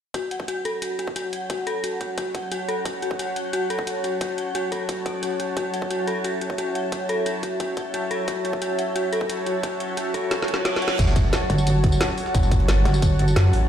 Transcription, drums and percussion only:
0.14 kick, closed hi-hat
0.31 closed hi-hat
0.40 kick
0.48 closed hi-hat
0.65 closed hi-hat
0.82 closed hi-hat
0.99 closed hi-hat
1.07 kick
1.16 closed hi-hat
1.33 closed hi-hat
1.50 kick, closed hi-hat
1.67 closed hi-hat
1.84 closed hi-hat
2.01 kick, closed hi-hat
2.18 kick, closed hi-hat
2.35 kick, closed hi-hat
2.52 closed hi-hat
2.69 closed hi-hat
2.85 kick, closed hi-hat
3.02 closed hi-hat
3.11 kick
3.19 closed hi-hat
3.36 closed hi-hat
3.53 closed hi-hat
3.70 closed hi-hat
3.79 kick
3.87 closed hi-hat
4.04 closed hi-hat
4.21 kick, closed hi-hat
4.38 closed hi-hat
4.55 closed hi-hat
4.72 kick, closed hi-hat
4.89 kick, closed hi-hat
5.06 kick, closed hi-hat
5.23 closed hi-hat
5.40 closed hi-hat
5.57 kick, closed hi-hat
5.74 closed hi-hat
5.82 kick
5.91 closed hi-hat
6.07 closed hi-hat
6.24 closed hi-hat
6.41 closed hi-hat
6.50 kick
6.58 closed hi-hat
6.75 closed hi-hat
6.92 kick, closed hi-hat
7.09 closed hi-hat
7.26 closed hi-hat
7.43 kick, closed hi-hat
7.60 kick, closed hi-hat
7.77 kick, closed hi-hat
7.94 closed hi-hat
8.11 closed hi-hat
8.28 kick, closed hi-hat
8.45 closed hi-hat
8.53 kick
8.62 closed hi-hat
8.79 closed hi-hat
8.96 closed hi-hat
9.13 closed hi-hat
9.21 kick
9.30 closed hi-hat
9.46 closed hi-hat
9.63 kick, closed hi-hat
9.80 closed hi-hat
9.97 closed hi-hat
10.14 kick, closed hi-hat
10.31 snare, closed hi-hat
10.42 snare
10.48 closed hi-hat
10.54 snare
10.65 snare, closed hi-hat
10.76 snare
10.82 closed hi-hat
10.88 snare
10.99 kick, closed hi-hat, tambourine, crash
11.07 snare, tambourine
11.16 kick, closed hi-hat, tambourine
11.33 snare, closed hi-hat, tambourine
11.50 closed hi-hat
11.58 tambourine
11.67 closed hi-hat, tambourine
11.84 kick, closed hi-hat, open hi-hat
11.92 tambourine
12.01 snare, closed hi-hat, tambourine
12.09 snare
12.18 closed hi-hat, open hi-hat, tambourine
12.26 snare
12.35 kick, closed hi-hat, tambourine
12.43 closed hi-hat, tambourine
12.51 kick, closed hi-hat, tambourine
12.60 closed hi-hat
12.68 snare, closed hi-hat, tambourine
12.85 snare, closed hi-hat
12.94 snare, tambourine
13.02 kick, closed hi-hat, tambourine
13.19 closed hi-hat
13.28 closed hi-hat, tambourine
13.36 snare, closed hi-hat, tambourine
13.53 closed hi-hat, open hi-hat, tambourine

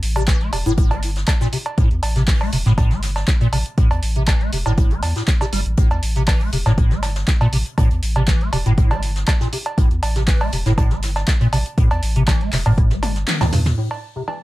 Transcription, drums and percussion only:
0.03 closed hi-hat, open hi-hat
0.16 closed hi-hat, cowbell
0.28 kick, snare, clap, closed hi-hat
0.41 closed hi-hat
0.53 closed hi-hat, open hi-hat, cowbell
0.66 closed hi-hat
0.77 kick, closed hi-hat
0.91 closed hi-hat, cowbell
1.03 closed hi-hat, open hi-hat
1.16 snare, closed hi-hat
1.27 kick, snare, clap, closed hi-hat, cowbell
1.41 snare, closed hi-hat
1.53 closed hi-hat, open hi-hat
1.66 closed hi-hat, cowbell
1.78 kick, closed hi-hat
1.91 closed hi-hat
2.03 closed hi-hat, open hi-hat, cowbell
2.16 snare, closed hi-hat
2.28 kick, snare, clap, closed hi-hat, open hi-hat
2.41 closed hi-hat, cowbell
2.52 closed hi-hat, open hi-hat
2.66 snare, closed hi-hat
2.78 kick, closed hi-hat, cowbell
2.91 snare, closed hi-hat
3.03 snare, closed hi-hat, open hi-hat
3.16 snare, closed hi-hat, cowbell
3.27 kick, snare, clap, closed hi-hat
3.41 closed hi-hat
3.53 closed hi-hat, open hi-hat, cowbell
3.66 closed hi-hat
3.78 kick, closed hi-hat
3.91 closed hi-hat, cowbell
4.03 closed hi-hat, open hi-hat
4.16 closed hi-hat
4.28 kick, snare, clap, closed hi-hat, cowbell
4.41 closed hi-hat
4.53 closed hi-hat, open hi-hat
4.66 closed hi-hat, cowbell
4.78 kick, closed hi-hat
4.91 closed hi-hat
5.03 closed hi-hat, open hi-hat, cowbell
5.16 snare, closed hi-hat
5.27 kick, snare, clap, closed hi-hat
5.41 snare, closed hi-hat, cowbell
5.53 closed hi-hat, open hi-hat
5.66 closed hi-hat
5.77 kick, closed hi-hat
5.91 closed hi-hat, cowbell
6.03 closed hi-hat, open hi-hat
6.16 snare, closed hi-hat
6.28 kick, snare, clap, closed hi-hat, open hi-hat, cowbell
6.41 closed hi-hat
6.53 closed hi-hat, open hi-hat
6.66 snare, closed hi-hat, cowbell
6.77 kick, closed hi-hat
6.91 snare, closed hi-hat
7.03 snare, closed hi-hat, open hi-hat, cowbell
7.16 snare, closed hi-hat
7.27 kick, snare, clap, closed hi-hat
7.41 closed hi-hat, cowbell
7.53 closed hi-hat, open hi-hat
7.66 closed hi-hat
7.78 kick, closed hi-hat, cowbell
7.91 closed hi-hat
8.03 closed hi-hat, open hi-hat
8.16 closed hi-hat, cowbell
8.28 kick, snare, clap, closed hi-hat
8.41 closed hi-hat
8.53 closed hi-hat, open hi-hat, cowbell
8.66 closed hi-hat
8.78 kick, closed hi-hat
8.91 closed hi-hat, cowbell
9.02 closed hi-hat, open hi-hat
9.16 snare, closed hi-hat
9.28 kick, snare, clap, closed hi-hat, cowbell
9.41 snare, closed hi-hat
9.53 closed hi-hat, open hi-hat
9.66 closed hi-hat, cowbell
9.78 kick, closed hi-hat
9.91 closed hi-hat
10.03 closed hi-hat, open hi-hat, cowbell
10.16 snare, closed hi-hat
10.27 kick, snare, clap, closed hi-hat, open hi-hat
10.41 closed hi-hat, cowbell
10.52 closed hi-hat, open hi-hat
10.66 snare, closed hi-hat
10.78 kick, closed hi-hat, cowbell
10.91 snare, closed hi-hat
11.02 snare, closed hi-hat, open hi-hat
11.16 snare, closed hi-hat, cowbell
11.28 kick, snare, clap, closed hi-hat
11.41 closed hi-hat
11.53 closed hi-hat, open hi-hat, cowbell
11.66 closed hi-hat
11.78 kick, closed hi-hat
11.91 closed hi-hat, cowbell
12.02 closed hi-hat, open hi-hat
12.16 closed hi-hat
12.28 kick, snare, clap, closed hi-hat, cowbell
12.41 closed hi-hat
12.53 snare, clap, open hi-hat
12.66 cowbell
12.78 kick, closed hi-hat
12.90 snare, closed hi-hat
13.03 closed hi-hat, open hi-hat, high tom, cowbell
13.16 snare, closed hi-hat
13.28 snare, clap, closed hi-hat, open hi-hat, mid tom
13.41 snare, closed hi-hat, open hi-hat, mid tom, cowbell
13.53 snare, mid tom, open hi-hat
13.66 snare, closed hi-hat, mid tom, open hi-hat
13.91 cowbell
14.28 cowbell

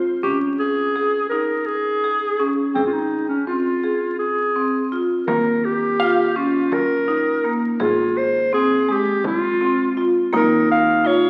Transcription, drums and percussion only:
5.28 frame drum
6.72 frame drum
7.80 frame drum
8.52 frame drum
9.24 frame drum
10.33 frame drum

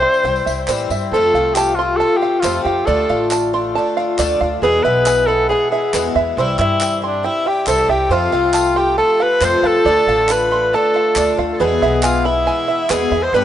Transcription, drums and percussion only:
0.14 tambourine
0.25 tambourine
0.36 tambourine
0.47 tambourine
0.58 tambourine
0.68 clap, tambourine
0.80 tambourine
0.90 tambourine
1.01 tambourine
1.56 clap, tambourine
2.43 clap, tambourine
3.31 clap, tambourine
4.19 clap, tambourine
5.06 clap, tambourine
5.94 clap, tambourine
6.59 clap
6.81 clap, tambourine
7.67 clap, tambourine
8.54 clap, tambourine
9.41 clap, tambourine
10.29 clap, tambourine
11.16 clap, tambourine
12.03 clap, tambourine
12.90 clap, tambourine

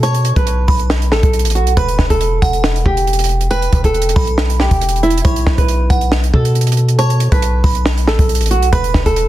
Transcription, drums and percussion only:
0.03 closed hi-hat
0.15 closed hi-hat
0.25 closed hi-hat
0.36 kick, closed hi-hat
0.47 closed hi-hat
0.68 kick, open hi-hat
0.79 closed hi-hat
0.90 snare
1.02 closed hi-hat
1.12 snare
1.23 kick, closed hi-hat
1.33 closed hi-hat
1.39 closed hi-hat
1.45 closed hi-hat
1.50 closed hi-hat
1.55 closed hi-hat
1.67 closed hi-hat
1.77 kick, closed hi-hat
1.88 closed hi-hat
1.99 kick, snare
2.10 kick, closed hi-hat
2.21 closed hi-hat
2.42 kick, closed hi-hat
2.53 closed hi-hat
2.64 snare
2.76 closed hi-hat
2.86 kick
2.97 closed hi-hat
3.07 closed hi-hat
3.13 closed hi-hat
3.19 closed hi-hat
3.24 closed hi-hat
3.29 closed hi-hat
3.41 closed hi-hat
3.51 closed hi-hat
3.62 closed hi-hat
3.73 kick, closed hi-hat
3.84 kick, closed hi-hat
3.94 closed hi-hat
4.02 closed hi-hat
4.09 closed hi-hat
4.16 kick, open hi-hat
4.27 closed hi-hat
4.38 snare
4.50 closed hi-hat
4.60 snare
4.71 kick, closed hi-hat
4.81 closed hi-hat
4.89 closed hi-hat
4.96 closed hi-hat
5.03 closed hi-hat
5.10 closed hi-hat
5.18 closed hi-hat
5.25 kick, closed hi-hat
5.36 closed hi-hat
5.47 kick, snare
5.58 kick, closed hi-hat
5.68 closed hi-hat
5.90 kick, closed hi-hat
6.01 closed hi-hat
6.12 snare
6.24 closed hi-hat
6.34 kick
6.45 closed hi-hat
6.55 closed hi-hat
6.61 closed hi-hat
6.67 closed hi-hat
6.72 closed hi-hat
6.77 closed hi-hat
6.89 closed hi-hat
6.99 closed hi-hat
7.10 closed hi-hat
7.20 closed hi-hat
7.32 kick, closed hi-hat
7.42 closed hi-hat
7.64 kick, open hi-hat
7.75 closed hi-hat
7.86 snare
7.98 closed hi-hat
8.07 snare
8.19 kick, closed hi-hat
8.29 closed hi-hat
8.35 closed hi-hat
8.41 closed hi-hat
8.46 closed hi-hat
8.51 closed hi-hat
8.62 closed hi-hat
8.73 kick, closed hi-hat
8.84 closed hi-hat
8.94 kick, snare
9.06 kick, closed hi-hat
9.16 closed hi-hat

